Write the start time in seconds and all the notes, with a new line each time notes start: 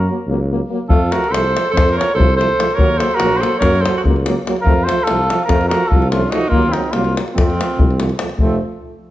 Already playing: F#4 A#4
0.09 F#3 A#3
0.27 C#2 F#3 A#3
0.51 F#3 A#3
0.70 F#3 A#3
0.89 F2 F3 A3 F4 A4, davul low
1.11 F3 A3 F#4 A#4, davul high
1.24 davul high
1.29 C2 A3 A4 C5
1.34 F3, davul high
1.54 F3 A3, davul high
1.71 F2 A3 A4 C5
1.76 F3, davul high, davul low
1.89 A#4, davul high
1.96 F3 A3 C#5
2.01 davul high
2.14 C2 A3 A4 C5
2.18 F3, davul low
2.30 davul high
2.36 F3 A3 A4 C5
2.41 davul high
2.59 F3 A3, davul high
2.70 A#4, davul high
2.75 D#2 F#3 A#3 C#5, davul low
2.97 A#3 A4 C5, davul high
3.01 F#3
3.11 A#4, davul high
3.17 A#1 F#4, davul high
3.21 F#3 A#3
3.37 C5
3.41 F#3 A#3 A4, davul high
3.58 F#2 A#3 A#4 C#5, davul high, davul low
3.65 F#3
3.75 davul high
3.81 A#3 A4 C5
3.86 F#3, davul high
3.97 F#4 A4 C5
4.04 C#2 F#3 A#3, davul low
4.16 davul high
4.26 F#3 A#3, davul high
4.47 F#3 A#3, davul high
4.57 davul high
4.61 F2 F4 A#4
4.65 F3 A3, davul low
4.84 A3 A4 C5
4.89 F3, davul high
4.99 davul high
5.04 A3 F4 A4, davul high
5.09 C2 F3
5.28 A3, davul high
5.33 F3
5.44 A3 F4 A#4
5.49 F2 F3, davul high, davul low
5.61 davul high
5.68 A3 F#4 A#4, davul high
5.75 F3
5.87 A3 F4 A4
5.91 C2 F3, davul low
6.02 davul high
6.10 A3 C#4 F4, davul high
6.16 F3
6.29 A3 D#4 F#4, davul high
6.35 F3
6.41 davul high
6.48 D#2 A#3 F4, davul low
6.54 F#3
6.62 davul high
6.69 C4 D#4
6.73 F#3 A#3, davul high
6.84 davul high
6.91 C2 A#3 F4, davul high
6.96 F#3
7.04 davul high
7.15 F#3 A#3, davul high
7.28 davul high
7.33 F2 A3 C4 F4
7.38 F3, davul high, davul low
7.50 davul high
7.58 F3 A3, davul high
7.77 C2 F3 A3, davul low
7.91 davul high
7.99 F3 A3, davul high
8.09 davul high
8.18 F3 A3, davul high
8.29 davul high
8.38 F1 F3 A3 C4, davul low